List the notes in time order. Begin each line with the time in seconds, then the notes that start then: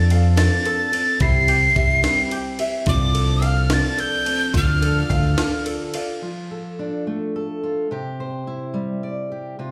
Already playing: F2 C4 D4 F4 A4
0.10 F3 C4 D4 A4 F5, ride
0.36 F3 C4 D4 F4 A4 A6, snare, ride
0.65 A4, ride
0.92 C4 D4 A4, ride
1.20 C2 C3 G3 C4 E4 G4 C7, kick, ride
1.48 G4, ride
1.75 C2 G3 C4 E4 G4 E5, kick, ride
2.02 C3 G3 C4 E4 G4, snare, ride
2.31 G4, ride
2.59 C4 E4 G4 E5, ride
2.86 C2 C3 F3 C4 D4 F4 A4 D6, kick, ride
3.14 A4, ride
3.42 F3 C4 D4 A4 F5 F6, ride
3.70 C3 F3 C4 D4 F4 A4 A6, snare, ride
3.98 A4 G6, ride
4.25 C4 D4 A4, ride
4.53 D2 D3 F3 D4 F4 A4 F6, kick, ride
4.82 A4, ride
5.09 D2 F3 D4 F4 A4 F5, kick, ride
5.37 D3 F3 D4 F4 A4, snare, ride
5.66 A4, ride
5.94 D4 F4 A4 F5, ride
6.22 F3 F4
6.51 A4
6.79 D4
7.07 A3
7.36 A4
7.63 F4
7.91 C3 G4
8.20 C5
8.47 E4
8.74 G3
9.03 D5
9.32 G4
9.59 C3 F4